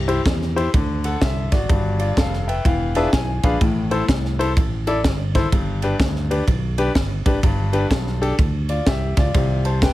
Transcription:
Already playing: fingered electric bass C2, grand piano C3
0.08 grand piano E4 G4 C5, ride
0.25 fingered electric bass E2, kick, snare, ride
0.42 snare
0.56 grand piano E4 G4 C5, ride
0.74 fingered electric bass D2, grand piano D3, kick, ride
1.04 grand piano A4 F#5, ride
1.21 fingered electric bass C2, grand piano E5, kick, snare, ride
1.52 fingered electric bass G#1, grand piano F#4 D5, kick, snare, ride
1.69 fingered electric bass G1, grand piano G2, kick, ride
2.00 grand piano F4 D5, ride
2.17 fingered electric bass F1, grand piano A4 F5, kick, snare, ride
2.33 snare
2.48 grand piano B4 E5 G5, ride
2.65 fingered electric bass E1, grand piano E3 F5, kick, ride
2.95 grand piano D4 F4 G#4 B4 E5 A5, ride
3.13 fingered electric bass B1, grand piano G#5, kick, snare, ride
3.43 fingered electric bass A#1, grand piano D4 F4 G#4 B4 F5 B5, kick, ride
3.61 fingered electric bass A1, grand piano A2, kick, ride
3.91 grand piano E4 A4 C5, ride
4.08 fingered electric bass C2, kick, snare, ride
4.25 snare
4.39 grand piano E4 A4 C5, ride
4.57 fingered electric bass A1, kick, ride
4.87 grand piano E4 A4 D5, ride
5.04 fingered electric bass G1, kick, snare, ride
5.35 grand piano E4 A4 C5, kick, snare, ride
5.52 fingered electric bass G1, grand piano G2, kick, ride
5.82 grand piano D4 G4 B4, ride
6.00 fingered electric bass D2, kick, snare, ride
6.16 snare
6.31 grand piano D4 G4 B4, ride
6.48 fingered electric bass B1, kick, ride
6.78 grand piano D4 G4 B4, ride
6.95 fingered electric bass G1, kick, snare, ride
7.26 fingered electric bass G#1, grand piano D4 G4 B4, kick, ride
7.43 fingered electric bass G1, grand piano G2, kick, ride
7.73 grand piano D4 G4 B4, ride
7.91 fingered electric bass B1, kick, snare, ride
8.07 snare
8.21 grand piano D4 G4 A4, ride
8.38 fingered electric bass D2, kick, ride
8.69 grand piano F4 D5, ride
8.86 fingered electric bass C2, grand piano G4 E5, kick, snare, ride
9.17 fingered electric bass C#2, grand piano F4 D5, kick, snare, ride
9.34 fingered electric bass C2, grand piano C3, kick, ride
9.65 grand piano C5 A5, ride
9.82 grand piano B4 G5, kick, snare, ride

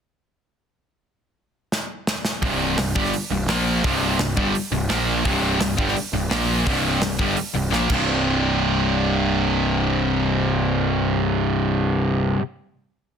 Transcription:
1.72 snare
2.07 snare
2.25 snare
2.42 picked electric bass C1, distorted electric guitar C2 G2 C3, kick, open hi-hat
2.77 picked electric bass C1, distorted electric guitar C2 G2, snare, open hi-hat
2.95 picked electric bass G1, distorted electric guitar G2 D3 G3, kick
3.05 snare
3.13 open hi-hat
3.30 picked electric bass C1, distorted electric guitar C2 G2
3.47 picked electric bass A#1, distorted electric guitar A#2 F3 A#3, snare, open hi-hat
3.83 picked electric bass C1, distorted electric guitar C2 G2 C3, kick, open hi-hat
4.19 picked electric bass C1, distorted electric guitar C2 G2, snare, open hi-hat
4.37 picked electric bass G1, distorted electric guitar G2 D3 G3, kick
4.55 open hi-hat
4.71 picked electric bass C1, distorted electric guitar C2 G2
4.89 picked electric bass A#1, distorted electric guitar A#2 F3 A#3, snare, open hi-hat
5.25 picked electric bass C1, distorted electric guitar C2 G2 C3, kick, open hi-hat
5.60 picked electric bass C1, distorted electric guitar C2 G2, snare, open hi-hat
5.77 picked electric bass G1, distorted electric guitar G2 D3 G3, kick
5.88 snare
5.96 open hi-hat
6.13 picked electric bass C1, distorted electric guitar C2 G2
6.29 picked electric bass A#1, distorted electric guitar A#2 F3 A#3, snare
6.64 picked electric bass C1, distorted electric guitar C2 G2 C3, kick, open hi-hat
7.01 picked electric bass C1, distorted electric guitar C2 G2, snare, open hi-hat
7.19 picked electric bass G1, distorted electric guitar G2 D3 G3, kick
7.37 open hi-hat
7.54 picked electric bass C1, distorted electric guitar C2 G2
7.71 picked electric bass A#1, distorted electric guitar A#2 F3 A#3, snare
7.89 picked electric bass C1, distorted electric guitar C2 G2 C3, kick, crash

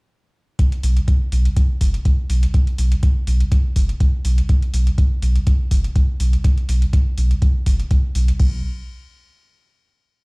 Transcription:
0.59 kick, closed hi-hat
0.72 closed hi-hat
0.83 sub bass B1, open hi-hat
0.97 closed hi-hat
1.08 kick, closed hi-hat
1.32 sub bass B1, open hi-hat
1.45 closed hi-hat
1.57 kick, closed hi-hat
1.81 sub bass F#1, kick, open hi-hat
1.94 closed hi-hat
2.05 kick, closed hi-hat
2.30 sub bass B1, open hi-hat
2.43 closed hi-hat
2.54 kick, closed hi-hat
2.67 closed hi-hat
2.78 sub bass B1, open hi-hat
2.92 closed hi-hat
3.03 kick, closed hi-hat
3.27 sub bass B1, open hi-hat
3.40 closed hi-hat
3.52 kick, closed hi-hat
3.76 sub bass F#1, kick, open hi-hat
3.89 closed hi-hat
4.00 kick, closed hi-hat
4.25 sub bass B1, open hi-hat
4.38 closed hi-hat
4.49 kick, closed hi-hat
4.62 closed hi-hat
4.74 sub bass B1, open hi-hat
4.87 closed hi-hat
4.98 kick, closed hi-hat
5.22 sub bass B1, open hi-hat
5.36 closed hi-hat
5.47 kick, closed hi-hat
5.71 sub bass F#1, kick, open hi-hat
5.84 closed hi-hat
5.96 kick, closed hi-hat
6.20 sub bass B1, open hi-hat
6.33 closed hi-hat
6.44 kick, closed hi-hat
6.58 closed hi-hat
6.69 sub bass B1, open hi-hat
6.82 closed hi-hat
6.93 kick, closed hi-hat
7.18 sub bass B1, open hi-hat
7.31 closed hi-hat
7.42 kick, closed hi-hat
7.66 sub bass F#1, kick, open hi-hat
7.80 closed hi-hat
7.91 kick, closed hi-hat
8.15 sub bass B1, open hi-hat
8.28 closed hi-hat
8.40 sub bass B1, kick, crash

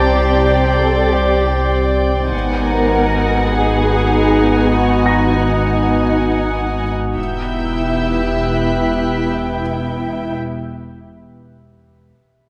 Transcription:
Already playing: double bass section C2, sub bass C2, viola section C4 D5, cello section G4, synth texture G4 C5 D5, violin section D5 G5 A5 A#5, grand piano A5 A6 C7
0.81 cello section A4
1.11 cello section G4, grand piano D5 D6
2.32 double bass section G#1, sub bass G#1, synth texture B3 D#4 F#4, viola section B3 D#4, violin section F#5 G#5
2.63 cello section A#4
3.53 cello section G#4
4.75 cello section F#4
5.06 grand piano A#5 A#6
5.36 cello section D#4
7.17 sub bass E1, double bass section E1, viola section B3 E4, cello section E4, synth texture G4 B4 E5, violin section E5 G5 E6 G6
8.39 violin section B6

